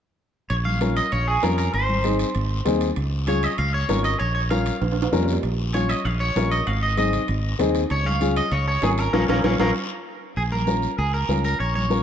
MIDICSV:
0, 0, Header, 1, 5, 480
1, 0, Start_track
1, 0, Key_signature, -5, "minor"
1, 0, Tempo, 308166
1, 785, Time_signature, 4, 2, 24, 8
1, 18736, End_track
2, 0, Start_track
2, 0, Title_t, "Clean electric guitar"
2, 0, Program_c, 0, 27
2, 778, Note_on_c, 0, 73, 98
2, 855, Note_off_c, 0, 73, 0
2, 1014, Note_on_c, 0, 77, 89
2, 1499, Note_off_c, 0, 77, 0
2, 1505, Note_on_c, 0, 75, 93
2, 1728, Note_off_c, 0, 75, 0
2, 1747, Note_on_c, 0, 73, 90
2, 1969, Note_off_c, 0, 73, 0
2, 1988, Note_on_c, 0, 68, 84
2, 2226, Note_on_c, 0, 70, 82
2, 2233, Note_off_c, 0, 68, 0
2, 2444, Note_off_c, 0, 70, 0
2, 2463, Note_on_c, 0, 70, 83
2, 2687, Note_off_c, 0, 70, 0
2, 2715, Note_on_c, 0, 72, 75
2, 3380, Note_off_c, 0, 72, 0
2, 5113, Note_on_c, 0, 73, 79
2, 5354, Note_off_c, 0, 73, 0
2, 5354, Note_on_c, 0, 75, 99
2, 5581, Note_off_c, 0, 75, 0
2, 5588, Note_on_c, 0, 77, 106
2, 5810, Note_off_c, 0, 77, 0
2, 5829, Note_on_c, 0, 73, 101
2, 6274, Note_off_c, 0, 73, 0
2, 6304, Note_on_c, 0, 75, 87
2, 6527, Note_off_c, 0, 75, 0
2, 6533, Note_on_c, 0, 73, 88
2, 6753, Note_off_c, 0, 73, 0
2, 6772, Note_on_c, 0, 73, 70
2, 6850, Note_off_c, 0, 73, 0
2, 7016, Note_on_c, 0, 77, 76
2, 7467, Note_off_c, 0, 77, 0
2, 8944, Note_on_c, 0, 73, 77
2, 9177, Note_off_c, 0, 73, 0
2, 9177, Note_on_c, 0, 75, 86
2, 9423, Note_off_c, 0, 75, 0
2, 9423, Note_on_c, 0, 77, 94
2, 9660, Note_on_c, 0, 73, 101
2, 9666, Note_off_c, 0, 77, 0
2, 10110, Note_off_c, 0, 73, 0
2, 10147, Note_on_c, 0, 75, 83
2, 10389, Note_off_c, 0, 75, 0
2, 10389, Note_on_c, 0, 77, 98
2, 10628, Note_off_c, 0, 77, 0
2, 10634, Note_on_c, 0, 75, 74
2, 10854, Note_off_c, 0, 75, 0
2, 10878, Note_on_c, 0, 75, 72
2, 11320, Note_off_c, 0, 75, 0
2, 12326, Note_on_c, 0, 73, 103
2, 12560, Note_on_c, 0, 77, 98
2, 12564, Note_off_c, 0, 73, 0
2, 13030, Note_off_c, 0, 77, 0
2, 13036, Note_on_c, 0, 75, 104
2, 13277, Note_on_c, 0, 73, 91
2, 13279, Note_off_c, 0, 75, 0
2, 13503, Note_off_c, 0, 73, 0
2, 13522, Note_on_c, 0, 73, 93
2, 13758, Note_on_c, 0, 68, 86
2, 13762, Note_off_c, 0, 73, 0
2, 13836, Note_off_c, 0, 68, 0
2, 13998, Note_on_c, 0, 70, 82
2, 14209, Note_off_c, 0, 70, 0
2, 14223, Note_on_c, 0, 70, 87
2, 14236, Note_on_c, 0, 73, 84
2, 14237, Note_on_c, 0, 77, 74
2, 14381, Note_off_c, 0, 70, 0
2, 14382, Note_off_c, 0, 77, 0
2, 14384, Note_off_c, 0, 73, 0
2, 14468, Note_on_c, 0, 77, 83
2, 14479, Note_on_c, 0, 73, 87
2, 14484, Note_on_c, 0, 70, 79
2, 14624, Note_off_c, 0, 77, 0
2, 14625, Note_off_c, 0, 70, 0
2, 14626, Note_off_c, 0, 73, 0
2, 14706, Note_on_c, 0, 70, 84
2, 14719, Note_on_c, 0, 73, 82
2, 14725, Note_on_c, 0, 77, 77
2, 14863, Note_off_c, 0, 70, 0
2, 14864, Note_off_c, 0, 77, 0
2, 14865, Note_off_c, 0, 73, 0
2, 14953, Note_on_c, 0, 77, 96
2, 14957, Note_on_c, 0, 73, 102
2, 14965, Note_on_c, 0, 70, 96
2, 15105, Note_off_c, 0, 73, 0
2, 15106, Note_off_c, 0, 77, 0
2, 15107, Note_off_c, 0, 70, 0
2, 16154, Note_on_c, 0, 68, 88
2, 16231, Note_off_c, 0, 68, 0
2, 16388, Note_on_c, 0, 70, 85
2, 17057, Note_off_c, 0, 70, 0
2, 17111, Note_on_c, 0, 68, 83
2, 17342, Note_off_c, 0, 68, 0
2, 17349, Note_on_c, 0, 70, 87
2, 17794, Note_off_c, 0, 70, 0
2, 17831, Note_on_c, 0, 70, 98
2, 18052, Note_off_c, 0, 70, 0
2, 18072, Note_on_c, 0, 73, 104
2, 18292, Note_off_c, 0, 73, 0
2, 18309, Note_on_c, 0, 73, 92
2, 18736, Note_off_c, 0, 73, 0
2, 18736, End_track
3, 0, Start_track
3, 0, Title_t, "Upright piano"
3, 0, Program_c, 1, 0
3, 1254, Note_on_c, 1, 61, 68
3, 1261, Note_on_c, 1, 65, 68
3, 1269, Note_on_c, 1, 70, 70
3, 1595, Note_off_c, 1, 61, 0
3, 1599, Note_off_c, 1, 65, 0
3, 1603, Note_off_c, 1, 70, 0
3, 2219, Note_on_c, 1, 61, 75
3, 2225, Note_on_c, 1, 65, 59
3, 2228, Note_on_c, 1, 70, 77
3, 2558, Note_off_c, 1, 61, 0
3, 2561, Note_off_c, 1, 65, 0
3, 2562, Note_off_c, 1, 70, 0
3, 3177, Note_on_c, 1, 60, 65
3, 3179, Note_on_c, 1, 63, 67
3, 3186, Note_on_c, 1, 68, 83
3, 3517, Note_off_c, 1, 60, 0
3, 3518, Note_off_c, 1, 63, 0
3, 3521, Note_off_c, 1, 68, 0
3, 4132, Note_on_c, 1, 60, 88
3, 4137, Note_on_c, 1, 63, 71
3, 4143, Note_on_c, 1, 68, 99
3, 4474, Note_off_c, 1, 60, 0
3, 4477, Note_off_c, 1, 63, 0
3, 4480, Note_off_c, 1, 68, 0
3, 5094, Note_on_c, 1, 61, 68
3, 5099, Note_on_c, 1, 65, 67
3, 5105, Note_on_c, 1, 68, 84
3, 5436, Note_off_c, 1, 61, 0
3, 5438, Note_off_c, 1, 65, 0
3, 5441, Note_off_c, 1, 68, 0
3, 6051, Note_on_c, 1, 61, 71
3, 6059, Note_on_c, 1, 65, 66
3, 6066, Note_on_c, 1, 70, 82
3, 6394, Note_off_c, 1, 61, 0
3, 6398, Note_off_c, 1, 65, 0
3, 6402, Note_off_c, 1, 70, 0
3, 7015, Note_on_c, 1, 61, 72
3, 7018, Note_on_c, 1, 65, 70
3, 7024, Note_on_c, 1, 70, 74
3, 7357, Note_off_c, 1, 61, 0
3, 7358, Note_off_c, 1, 65, 0
3, 7361, Note_off_c, 1, 70, 0
3, 7978, Note_on_c, 1, 61, 82
3, 7982, Note_on_c, 1, 65, 76
3, 7990, Note_on_c, 1, 70, 91
3, 8318, Note_off_c, 1, 61, 0
3, 8320, Note_off_c, 1, 65, 0
3, 8325, Note_off_c, 1, 70, 0
3, 8939, Note_on_c, 1, 61, 69
3, 8945, Note_on_c, 1, 65, 65
3, 8948, Note_on_c, 1, 73, 75
3, 9279, Note_off_c, 1, 61, 0
3, 9282, Note_off_c, 1, 65, 0
3, 9284, Note_off_c, 1, 73, 0
3, 9905, Note_on_c, 1, 61, 69
3, 9911, Note_on_c, 1, 65, 67
3, 9918, Note_on_c, 1, 70, 74
3, 10243, Note_off_c, 1, 61, 0
3, 10245, Note_off_c, 1, 65, 0
3, 10249, Note_off_c, 1, 70, 0
3, 10857, Note_on_c, 1, 60, 65
3, 10866, Note_on_c, 1, 63, 66
3, 10870, Note_on_c, 1, 68, 75
3, 11199, Note_off_c, 1, 60, 0
3, 11203, Note_off_c, 1, 63, 0
3, 11205, Note_off_c, 1, 68, 0
3, 11821, Note_on_c, 1, 60, 89
3, 11829, Note_on_c, 1, 63, 79
3, 11836, Note_on_c, 1, 68, 99
3, 12161, Note_off_c, 1, 60, 0
3, 12165, Note_off_c, 1, 63, 0
3, 12168, Note_off_c, 1, 68, 0
3, 12788, Note_on_c, 1, 61, 73
3, 12793, Note_on_c, 1, 65, 65
3, 12800, Note_on_c, 1, 68, 83
3, 13124, Note_off_c, 1, 61, 0
3, 13126, Note_off_c, 1, 65, 0
3, 13130, Note_off_c, 1, 68, 0
3, 13748, Note_on_c, 1, 61, 75
3, 13754, Note_on_c, 1, 65, 61
3, 13762, Note_on_c, 1, 70, 75
3, 14084, Note_off_c, 1, 61, 0
3, 14087, Note_off_c, 1, 65, 0
3, 14091, Note_off_c, 1, 70, 0
3, 14226, Note_on_c, 1, 65, 96
3, 14227, Note_on_c, 1, 61, 89
3, 14229, Note_on_c, 1, 70, 95
3, 14380, Note_off_c, 1, 65, 0
3, 14381, Note_off_c, 1, 61, 0
3, 14382, Note_off_c, 1, 70, 0
3, 14469, Note_on_c, 1, 61, 81
3, 14469, Note_on_c, 1, 65, 82
3, 14472, Note_on_c, 1, 70, 85
3, 14622, Note_off_c, 1, 61, 0
3, 14622, Note_off_c, 1, 65, 0
3, 14624, Note_off_c, 1, 70, 0
3, 14708, Note_on_c, 1, 70, 92
3, 14709, Note_on_c, 1, 61, 98
3, 14712, Note_on_c, 1, 65, 92
3, 14861, Note_off_c, 1, 70, 0
3, 14862, Note_off_c, 1, 61, 0
3, 14863, Note_off_c, 1, 65, 0
3, 14951, Note_on_c, 1, 61, 86
3, 14951, Note_on_c, 1, 70, 89
3, 14953, Note_on_c, 1, 65, 87
3, 15103, Note_off_c, 1, 61, 0
3, 15103, Note_off_c, 1, 70, 0
3, 15104, Note_off_c, 1, 65, 0
3, 16614, Note_on_c, 1, 61, 73
3, 16624, Note_on_c, 1, 65, 61
3, 16630, Note_on_c, 1, 70, 80
3, 16956, Note_off_c, 1, 61, 0
3, 16961, Note_off_c, 1, 65, 0
3, 16964, Note_off_c, 1, 70, 0
3, 17580, Note_on_c, 1, 61, 66
3, 17586, Note_on_c, 1, 65, 61
3, 17591, Note_on_c, 1, 70, 75
3, 17919, Note_off_c, 1, 61, 0
3, 17922, Note_off_c, 1, 65, 0
3, 17925, Note_off_c, 1, 70, 0
3, 18530, Note_on_c, 1, 61, 72
3, 18538, Note_on_c, 1, 65, 65
3, 18547, Note_on_c, 1, 70, 77
3, 18736, Note_off_c, 1, 61, 0
3, 18736, Note_off_c, 1, 65, 0
3, 18736, Note_off_c, 1, 70, 0
3, 18736, End_track
4, 0, Start_track
4, 0, Title_t, "Fingered electric bass"
4, 0, Program_c, 2, 33
4, 782, Note_on_c, 2, 34, 92
4, 1551, Note_off_c, 2, 34, 0
4, 1752, Note_on_c, 2, 34, 100
4, 2133, Note_off_c, 2, 34, 0
4, 2228, Note_on_c, 2, 41, 85
4, 2611, Note_off_c, 2, 41, 0
4, 2706, Note_on_c, 2, 32, 87
4, 3473, Note_off_c, 2, 32, 0
4, 3667, Note_on_c, 2, 32, 108
4, 4050, Note_off_c, 2, 32, 0
4, 4142, Note_on_c, 2, 39, 104
4, 4527, Note_off_c, 2, 39, 0
4, 4622, Note_on_c, 2, 37, 91
4, 5392, Note_off_c, 2, 37, 0
4, 5583, Note_on_c, 2, 37, 107
4, 5968, Note_off_c, 2, 37, 0
4, 6064, Note_on_c, 2, 32, 97
4, 6449, Note_off_c, 2, 32, 0
4, 6550, Note_on_c, 2, 34, 83
4, 7317, Note_off_c, 2, 34, 0
4, 7502, Note_on_c, 2, 34, 97
4, 7888, Note_off_c, 2, 34, 0
4, 7977, Note_on_c, 2, 41, 94
4, 8365, Note_off_c, 2, 41, 0
4, 8463, Note_on_c, 2, 34, 94
4, 9233, Note_off_c, 2, 34, 0
4, 9423, Note_on_c, 2, 34, 103
4, 9809, Note_off_c, 2, 34, 0
4, 9907, Note_on_c, 2, 34, 91
4, 10292, Note_off_c, 2, 34, 0
4, 10392, Note_on_c, 2, 32, 89
4, 11159, Note_off_c, 2, 32, 0
4, 11353, Note_on_c, 2, 32, 100
4, 11735, Note_off_c, 2, 32, 0
4, 11834, Note_on_c, 2, 39, 97
4, 12216, Note_off_c, 2, 39, 0
4, 12316, Note_on_c, 2, 37, 97
4, 13081, Note_off_c, 2, 37, 0
4, 13265, Note_on_c, 2, 37, 100
4, 13650, Note_off_c, 2, 37, 0
4, 13748, Note_on_c, 2, 32, 103
4, 14132, Note_off_c, 2, 32, 0
4, 14224, Note_on_c, 2, 34, 90
4, 14404, Note_off_c, 2, 34, 0
4, 14465, Note_on_c, 2, 34, 88
4, 14645, Note_off_c, 2, 34, 0
4, 14704, Note_on_c, 2, 34, 89
4, 14884, Note_off_c, 2, 34, 0
4, 14944, Note_on_c, 2, 34, 86
4, 15124, Note_off_c, 2, 34, 0
4, 16149, Note_on_c, 2, 34, 86
4, 16916, Note_off_c, 2, 34, 0
4, 17107, Note_on_c, 2, 37, 93
4, 17491, Note_off_c, 2, 37, 0
4, 17581, Note_on_c, 2, 37, 95
4, 17967, Note_off_c, 2, 37, 0
4, 18064, Note_on_c, 2, 34, 83
4, 18736, Note_off_c, 2, 34, 0
4, 18736, End_track
5, 0, Start_track
5, 0, Title_t, "Drums"
5, 780, Note_on_c, 9, 65, 62
5, 785, Note_on_c, 9, 74, 60
5, 936, Note_off_c, 9, 65, 0
5, 941, Note_off_c, 9, 74, 0
5, 1028, Note_on_c, 9, 63, 65
5, 1183, Note_off_c, 9, 63, 0
5, 1260, Note_on_c, 9, 73, 65
5, 1261, Note_on_c, 9, 65, 68
5, 1266, Note_on_c, 9, 63, 85
5, 1415, Note_off_c, 9, 73, 0
5, 1417, Note_off_c, 9, 65, 0
5, 1422, Note_off_c, 9, 63, 0
5, 1504, Note_on_c, 9, 65, 71
5, 1508, Note_on_c, 9, 73, 62
5, 1660, Note_off_c, 9, 65, 0
5, 1664, Note_off_c, 9, 73, 0
5, 1745, Note_on_c, 9, 65, 66
5, 1749, Note_on_c, 9, 74, 66
5, 1901, Note_off_c, 9, 65, 0
5, 1905, Note_off_c, 9, 74, 0
5, 2226, Note_on_c, 9, 65, 71
5, 2226, Note_on_c, 9, 66, 69
5, 2228, Note_on_c, 9, 63, 83
5, 2230, Note_on_c, 9, 73, 69
5, 2382, Note_off_c, 9, 65, 0
5, 2382, Note_off_c, 9, 66, 0
5, 2384, Note_off_c, 9, 63, 0
5, 2386, Note_off_c, 9, 73, 0
5, 2461, Note_on_c, 9, 65, 70
5, 2472, Note_on_c, 9, 73, 78
5, 2617, Note_off_c, 9, 65, 0
5, 2628, Note_off_c, 9, 73, 0
5, 2704, Note_on_c, 9, 65, 59
5, 2709, Note_on_c, 9, 74, 65
5, 2860, Note_off_c, 9, 65, 0
5, 2865, Note_off_c, 9, 74, 0
5, 2945, Note_on_c, 9, 63, 70
5, 3101, Note_off_c, 9, 63, 0
5, 3177, Note_on_c, 9, 65, 61
5, 3186, Note_on_c, 9, 73, 68
5, 3187, Note_on_c, 9, 63, 87
5, 3332, Note_off_c, 9, 65, 0
5, 3342, Note_off_c, 9, 73, 0
5, 3343, Note_off_c, 9, 63, 0
5, 3417, Note_on_c, 9, 65, 74
5, 3422, Note_on_c, 9, 73, 73
5, 3573, Note_off_c, 9, 65, 0
5, 3578, Note_off_c, 9, 73, 0
5, 3655, Note_on_c, 9, 65, 67
5, 3663, Note_on_c, 9, 74, 64
5, 3811, Note_off_c, 9, 65, 0
5, 3819, Note_off_c, 9, 74, 0
5, 4138, Note_on_c, 9, 65, 63
5, 4138, Note_on_c, 9, 66, 72
5, 4142, Note_on_c, 9, 63, 86
5, 4142, Note_on_c, 9, 64, 79
5, 4144, Note_on_c, 9, 73, 72
5, 4294, Note_off_c, 9, 65, 0
5, 4294, Note_off_c, 9, 66, 0
5, 4297, Note_off_c, 9, 63, 0
5, 4297, Note_off_c, 9, 64, 0
5, 4300, Note_off_c, 9, 73, 0
5, 4375, Note_on_c, 9, 65, 70
5, 4380, Note_on_c, 9, 73, 66
5, 4531, Note_off_c, 9, 65, 0
5, 4536, Note_off_c, 9, 73, 0
5, 4616, Note_on_c, 9, 65, 63
5, 4622, Note_on_c, 9, 74, 60
5, 4772, Note_off_c, 9, 65, 0
5, 4777, Note_off_c, 9, 74, 0
5, 5096, Note_on_c, 9, 65, 69
5, 5105, Note_on_c, 9, 63, 85
5, 5105, Note_on_c, 9, 73, 63
5, 5252, Note_off_c, 9, 65, 0
5, 5261, Note_off_c, 9, 63, 0
5, 5261, Note_off_c, 9, 73, 0
5, 5341, Note_on_c, 9, 65, 73
5, 5344, Note_on_c, 9, 73, 67
5, 5497, Note_off_c, 9, 65, 0
5, 5500, Note_off_c, 9, 73, 0
5, 5579, Note_on_c, 9, 65, 66
5, 5592, Note_on_c, 9, 74, 64
5, 5734, Note_off_c, 9, 65, 0
5, 5747, Note_off_c, 9, 74, 0
5, 6059, Note_on_c, 9, 65, 64
5, 6059, Note_on_c, 9, 66, 72
5, 6062, Note_on_c, 9, 73, 76
5, 6065, Note_on_c, 9, 63, 83
5, 6215, Note_off_c, 9, 65, 0
5, 6215, Note_off_c, 9, 66, 0
5, 6218, Note_off_c, 9, 73, 0
5, 6221, Note_off_c, 9, 63, 0
5, 6297, Note_on_c, 9, 65, 70
5, 6302, Note_on_c, 9, 73, 75
5, 6453, Note_off_c, 9, 65, 0
5, 6458, Note_off_c, 9, 73, 0
5, 6538, Note_on_c, 9, 65, 62
5, 6547, Note_on_c, 9, 74, 58
5, 6694, Note_off_c, 9, 65, 0
5, 6703, Note_off_c, 9, 74, 0
5, 7020, Note_on_c, 9, 65, 67
5, 7025, Note_on_c, 9, 73, 60
5, 7027, Note_on_c, 9, 63, 80
5, 7176, Note_off_c, 9, 65, 0
5, 7181, Note_off_c, 9, 73, 0
5, 7183, Note_off_c, 9, 63, 0
5, 7257, Note_on_c, 9, 65, 72
5, 7268, Note_on_c, 9, 73, 69
5, 7413, Note_off_c, 9, 65, 0
5, 7423, Note_off_c, 9, 73, 0
5, 7501, Note_on_c, 9, 65, 77
5, 7506, Note_on_c, 9, 74, 67
5, 7657, Note_off_c, 9, 65, 0
5, 7662, Note_off_c, 9, 74, 0
5, 7665, Note_on_c, 9, 65, 77
5, 7821, Note_off_c, 9, 65, 0
5, 7821, Note_on_c, 9, 65, 88
5, 7977, Note_off_c, 9, 65, 0
5, 7986, Note_on_c, 9, 66, 82
5, 7988, Note_on_c, 9, 73, 69
5, 7993, Note_on_c, 9, 63, 81
5, 7993, Note_on_c, 9, 64, 77
5, 8139, Note_off_c, 9, 66, 0
5, 8139, Note_on_c, 9, 66, 74
5, 8143, Note_off_c, 9, 73, 0
5, 8149, Note_off_c, 9, 63, 0
5, 8149, Note_off_c, 9, 64, 0
5, 8224, Note_on_c, 9, 73, 72
5, 8295, Note_off_c, 9, 66, 0
5, 8300, Note_on_c, 9, 66, 77
5, 8380, Note_off_c, 9, 73, 0
5, 8456, Note_off_c, 9, 66, 0
5, 8459, Note_on_c, 9, 65, 55
5, 8462, Note_on_c, 9, 74, 66
5, 8615, Note_off_c, 9, 65, 0
5, 8618, Note_off_c, 9, 74, 0
5, 8941, Note_on_c, 9, 65, 63
5, 8944, Note_on_c, 9, 73, 60
5, 8947, Note_on_c, 9, 63, 77
5, 9096, Note_off_c, 9, 65, 0
5, 9100, Note_off_c, 9, 73, 0
5, 9103, Note_off_c, 9, 63, 0
5, 9184, Note_on_c, 9, 65, 73
5, 9188, Note_on_c, 9, 73, 69
5, 9340, Note_off_c, 9, 65, 0
5, 9344, Note_off_c, 9, 73, 0
5, 9428, Note_on_c, 9, 74, 70
5, 9434, Note_on_c, 9, 65, 64
5, 9584, Note_off_c, 9, 74, 0
5, 9589, Note_off_c, 9, 65, 0
5, 9904, Note_on_c, 9, 63, 83
5, 9910, Note_on_c, 9, 65, 62
5, 9910, Note_on_c, 9, 66, 73
5, 9910, Note_on_c, 9, 73, 73
5, 10060, Note_off_c, 9, 63, 0
5, 10066, Note_off_c, 9, 65, 0
5, 10066, Note_off_c, 9, 66, 0
5, 10066, Note_off_c, 9, 73, 0
5, 10148, Note_on_c, 9, 73, 69
5, 10149, Note_on_c, 9, 65, 59
5, 10304, Note_off_c, 9, 73, 0
5, 10305, Note_off_c, 9, 65, 0
5, 10387, Note_on_c, 9, 65, 62
5, 10393, Note_on_c, 9, 74, 66
5, 10543, Note_off_c, 9, 65, 0
5, 10549, Note_off_c, 9, 74, 0
5, 10864, Note_on_c, 9, 65, 64
5, 10870, Note_on_c, 9, 63, 88
5, 10875, Note_on_c, 9, 73, 65
5, 11020, Note_off_c, 9, 65, 0
5, 11026, Note_off_c, 9, 63, 0
5, 11030, Note_off_c, 9, 73, 0
5, 11108, Note_on_c, 9, 65, 67
5, 11109, Note_on_c, 9, 73, 65
5, 11116, Note_on_c, 9, 64, 66
5, 11264, Note_off_c, 9, 65, 0
5, 11265, Note_off_c, 9, 73, 0
5, 11271, Note_off_c, 9, 64, 0
5, 11342, Note_on_c, 9, 65, 63
5, 11351, Note_on_c, 9, 74, 74
5, 11498, Note_off_c, 9, 65, 0
5, 11507, Note_off_c, 9, 74, 0
5, 11828, Note_on_c, 9, 73, 69
5, 11829, Note_on_c, 9, 63, 84
5, 11829, Note_on_c, 9, 64, 83
5, 11829, Note_on_c, 9, 65, 72
5, 11829, Note_on_c, 9, 66, 74
5, 11983, Note_off_c, 9, 73, 0
5, 11985, Note_off_c, 9, 63, 0
5, 11985, Note_off_c, 9, 64, 0
5, 11985, Note_off_c, 9, 65, 0
5, 11985, Note_off_c, 9, 66, 0
5, 12066, Note_on_c, 9, 73, 75
5, 12067, Note_on_c, 9, 65, 64
5, 12222, Note_off_c, 9, 73, 0
5, 12223, Note_off_c, 9, 65, 0
5, 12307, Note_on_c, 9, 74, 68
5, 12308, Note_on_c, 9, 65, 62
5, 12463, Note_off_c, 9, 74, 0
5, 12464, Note_off_c, 9, 65, 0
5, 12545, Note_on_c, 9, 63, 65
5, 12701, Note_off_c, 9, 63, 0
5, 12788, Note_on_c, 9, 65, 61
5, 12789, Note_on_c, 9, 63, 82
5, 12793, Note_on_c, 9, 73, 71
5, 12944, Note_off_c, 9, 63, 0
5, 12944, Note_off_c, 9, 65, 0
5, 12949, Note_off_c, 9, 73, 0
5, 13029, Note_on_c, 9, 65, 79
5, 13032, Note_on_c, 9, 73, 66
5, 13184, Note_off_c, 9, 65, 0
5, 13188, Note_off_c, 9, 73, 0
5, 13265, Note_on_c, 9, 65, 65
5, 13269, Note_on_c, 9, 74, 70
5, 13420, Note_off_c, 9, 65, 0
5, 13424, Note_off_c, 9, 74, 0
5, 13738, Note_on_c, 9, 65, 69
5, 13738, Note_on_c, 9, 66, 70
5, 13749, Note_on_c, 9, 63, 80
5, 13750, Note_on_c, 9, 73, 70
5, 13894, Note_off_c, 9, 65, 0
5, 13894, Note_off_c, 9, 66, 0
5, 13905, Note_off_c, 9, 63, 0
5, 13905, Note_off_c, 9, 73, 0
5, 13984, Note_on_c, 9, 73, 71
5, 13987, Note_on_c, 9, 65, 65
5, 14140, Note_off_c, 9, 73, 0
5, 14143, Note_off_c, 9, 65, 0
5, 14227, Note_on_c, 9, 74, 93
5, 14228, Note_on_c, 9, 65, 83
5, 14229, Note_on_c, 9, 63, 100
5, 14382, Note_off_c, 9, 74, 0
5, 14384, Note_off_c, 9, 65, 0
5, 14385, Note_off_c, 9, 63, 0
5, 14465, Note_on_c, 9, 74, 103
5, 14470, Note_on_c, 9, 63, 96
5, 14474, Note_on_c, 9, 65, 96
5, 14621, Note_off_c, 9, 74, 0
5, 14625, Note_off_c, 9, 63, 0
5, 14629, Note_off_c, 9, 65, 0
5, 14706, Note_on_c, 9, 74, 103
5, 14707, Note_on_c, 9, 65, 85
5, 14712, Note_on_c, 9, 63, 107
5, 14862, Note_off_c, 9, 74, 0
5, 14863, Note_off_c, 9, 65, 0
5, 14868, Note_off_c, 9, 63, 0
5, 14945, Note_on_c, 9, 65, 108
5, 14947, Note_on_c, 9, 63, 93
5, 14947, Note_on_c, 9, 74, 90
5, 15100, Note_off_c, 9, 65, 0
5, 15102, Note_off_c, 9, 63, 0
5, 15102, Note_off_c, 9, 74, 0
5, 16143, Note_on_c, 9, 74, 66
5, 16298, Note_off_c, 9, 74, 0
5, 16390, Note_on_c, 9, 63, 67
5, 16546, Note_off_c, 9, 63, 0
5, 16619, Note_on_c, 9, 73, 70
5, 16626, Note_on_c, 9, 63, 83
5, 16775, Note_off_c, 9, 73, 0
5, 16782, Note_off_c, 9, 63, 0
5, 16860, Note_on_c, 9, 73, 67
5, 17015, Note_off_c, 9, 73, 0
5, 17107, Note_on_c, 9, 74, 64
5, 17262, Note_off_c, 9, 74, 0
5, 17584, Note_on_c, 9, 73, 65
5, 17589, Note_on_c, 9, 63, 77
5, 17740, Note_off_c, 9, 73, 0
5, 17745, Note_off_c, 9, 63, 0
5, 17822, Note_on_c, 9, 73, 64
5, 17978, Note_off_c, 9, 73, 0
5, 18067, Note_on_c, 9, 74, 66
5, 18223, Note_off_c, 9, 74, 0
5, 18305, Note_on_c, 9, 63, 69
5, 18461, Note_off_c, 9, 63, 0
5, 18541, Note_on_c, 9, 73, 63
5, 18549, Note_on_c, 9, 63, 86
5, 18696, Note_off_c, 9, 73, 0
5, 18705, Note_off_c, 9, 63, 0
5, 18736, End_track
0, 0, End_of_file